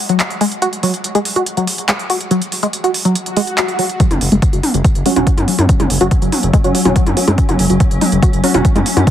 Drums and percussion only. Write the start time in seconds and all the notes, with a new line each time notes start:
0.09 closed hi-hat
0.20 clap, closed hi-hat
0.30 closed hi-hat
0.41 open hi-hat
0.52 closed hi-hat
0.62 closed hi-hat
0.73 closed hi-hat
0.83 open hi-hat
0.94 closed hi-hat
1.04 closed hi-hat
1.15 closed hi-hat
1.25 open hi-hat
1.36 closed hi-hat
1.46 closed hi-hat
1.57 closed hi-hat
1.67 open hi-hat
1.78 closed hi-hat
1.89 clap, closed hi-hat
1.99 closed hi-hat
2.10 open hi-hat
2.21 closed hi-hat
2.31 closed hi-hat
2.42 closed hi-hat
2.52 open hi-hat
2.63 closed hi-hat
2.73 closed hi-hat
2.84 closed hi-hat
2.94 open hi-hat
3.05 closed hi-hat
3.15 closed hi-hat
3.26 closed hi-hat
3.37 open hi-hat
3.47 closed hi-hat
3.58 clap, closed hi-hat
3.68 closed hi-hat
3.79 open hi-hat
3.90 closed hi-hat
4.00 kick, closed hi-hat
4.11 closed hi-hat, mid tom
4.21 open hi-hat
4.32 closed hi-hat
4.42 kick, closed hi-hat
4.53 closed hi-hat
4.63 open hi-hat, mid tom
4.74 closed hi-hat
4.84 kick, closed hi-hat
4.95 closed hi-hat
5.06 open hi-hat
5.16 closed hi-hat, mid tom
5.27 kick, closed hi-hat
5.38 closed hi-hat, mid tom
5.48 open hi-hat
5.59 closed hi-hat, mid tom
5.69 kick, closed hi-hat
5.80 closed hi-hat, mid tom
5.90 open hi-hat
6.01 closed hi-hat
6.11 kick, closed hi-hat
6.22 closed hi-hat
6.32 open hi-hat, mid tom
6.43 closed hi-hat
6.53 kick, closed hi-hat
6.64 closed hi-hat
6.75 open hi-hat
6.85 closed hi-hat, mid tom
6.96 kick, closed hi-hat
7.06 closed hi-hat, mid tom
7.17 open hi-hat
7.28 closed hi-hat, mid tom
7.38 kick, closed hi-hat
7.49 closed hi-hat, mid tom
7.59 open hi-hat
7.70 closed hi-hat
7.80 kick, closed hi-hat
7.91 closed hi-hat
8.01 open hi-hat, mid tom
8.12 closed hi-hat
8.22 kick, closed hi-hat
8.33 closed hi-hat
8.44 open hi-hat
8.54 closed hi-hat, mid tom
8.65 kick, closed hi-hat
8.76 closed hi-hat, mid tom
8.86 open hi-hat
8.97 closed hi-hat, mid tom
9.07 kick, closed hi-hat